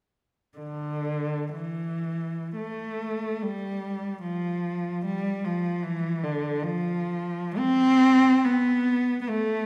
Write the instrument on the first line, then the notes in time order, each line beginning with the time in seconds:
cello
0.58 D3
1.55 E3
2.57 A3
3.42 G3
4.23 F3
5.05 G3
5.45 F3
5.83 E3
6.23 D3
6.62 F3
7.58 C4
8.45 B3
9.21 B3
9.29 A3